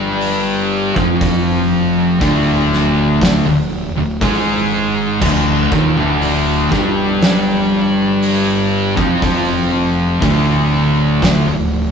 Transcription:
0.00 0.92 G1 medium
0.00 0.96 G2 loud
0.00 0.97 G3 loud
0.21 open hi-hat medium
0.96 2.17 F1 loud
0.96 2.19 F2 loud
0.96 2.20 F3 loud
0.96 kick loud
1.21 kick loud
1.21 open hi-hat medium
2.20 3.42 D1 loud
2.20 3.44 D2 loud
2.20 3.45 D3 loud
2.20 kick loud
2.20 open hi-hat medium
2.73 snare soft
3.22 kick loud
3.22 snare loud
3.22 open hi-hat medium
3.46 3.93 D1 medium
3.46 3.86 D2 medium
3.96 4.20 D1 medium
3.96 4.22 D2 medium
4.21 5.17 G#1 medium
4.21 5.20 G#2 loud
4.21 5.21 G#3 loud
4.21 kick loud
4.21 open hi-hat medium
5.21 5.68 D1 loud
5.21 5.70 D2 loud
5.21 5.71 D3 loud
5.21 kick loud
5.21 crash loud
5.72 5.95 D#1 medium
5.72 5.96 D#2 medium
5.72 5.96 D#3 loud
5.72 kick loud
5.96 6.67 D1 loud
5.96 6.71 D2 loud
5.96 6.71 D3 loud
6.22 open hi-hat medium
6.71 8.93 G1 loud
6.71 8.95 G2 medium
6.71 8.95 G3 loud
6.71 kick loud
6.71 snare soft
7.21 snare loud
7.21 open hi-hat medium
8.22 open hi-hat medium
8.96 10.19 F1 loud
8.96 10.20 F2 loud
8.96 10.20 F3 loud
8.96 kick loud
9.22 kick loud
9.22 open hi-hat medium
10.21 11.43 D1 loud
10.21 11.45 D2 loud
10.21 11.45 D3 loud
10.21 kick loud
10.21 open hi-hat medium
11.22 kick loud
11.22 snare loud
11.22 open hi-hat medium
11.47 11.91 D1 medium
11.47 11.88 D2 medium

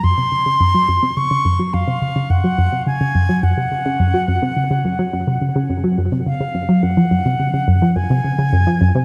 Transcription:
0.04 0.14 F#2 medium
0.04 1.18 C6 loud
0.18 0.28 C3 loud
0.32 0.45 C#3 medium
0.46 0.59 C#3 loud
0.60 0.74 F#2 loud
0.74 0.88 F#3 medium
0.88 0.99 F#2 loud
1.03 1.13 C3 loud
1.17 1.30 C#3 medium
1.17 1.75 C#6 loud
1.31 1.44 C#3 loud
1.45 1.59 F#2 loud
1.59 1.73 F#3 loud
1.74 1.84 F#2 loud
1.74 2.32 F5 loud
1.88 1.98 C3 loud
2.02 2.15 C#3 medium
2.16 2.29 C#3 loud
2.30 2.43 F#2 loud
2.30 2.86 F#5 loud
2.44 2.58 F#3 loud
2.58 2.69 F#2 loud
2.72 2.83 C3 loud
2.87 3.00 C#3 medium
2.87 3.45 G#5 loud
3.01 3.14 C#3 loud
3.15 3.28 F#2 loud
3.29 3.42 F#3 loud
3.43 3.54 F#2 loud
3.43 5.99 F#5 medium
3.57 3.68 C3 loud
3.71 3.84 C#3 medium
3.86 3.99 C#3 loud
4.00 4.13 F#2 loud
4.14 4.27 F#3 loud
4.28 4.39 F#2 loud
4.42 4.53 C3 loud
4.57 4.69 C#3 medium
4.71 4.84 C#3 loud
4.85 4.98 F#2 medium
4.99 5.12 F#3 loud
5.13 5.24 F#2 loud
5.27 5.38 C3 loud
5.42 5.54 C#3 medium
5.56 5.69 C#3 loud
5.70 5.83 F#2 loud
5.84 5.97 F#3 loud
5.98 6.09 F#2 loud
6.12 6.23 C3 loud
6.26 6.39 C#3 medium
6.26 6.85 F5 medium
6.40 6.54 C#3 loud
6.55 6.68 F#2 medium
6.69 6.82 F#3 loud
6.83 6.96 F#2 loud
6.83 7.98 F#5 medium
6.97 7.10 F3 loud
7.11 7.22 F#2 loud
7.25 7.36 C3 medium
7.40 7.53 C#3 medium
7.54 7.67 C#3 medium
7.68 7.81 F#2 loud
7.82 7.95 F3 loud
7.96 8.07 F#2 loud
7.96 9.05 G#5 loud
8.10 8.21 C3 loud
8.24 8.37 C#3 medium
8.39 8.52 C#3 loud
8.53 8.66 F#2 loud
8.67 8.80 F3 loud
8.81 8.92 F#2 loud
8.95 9.05 C3 loud

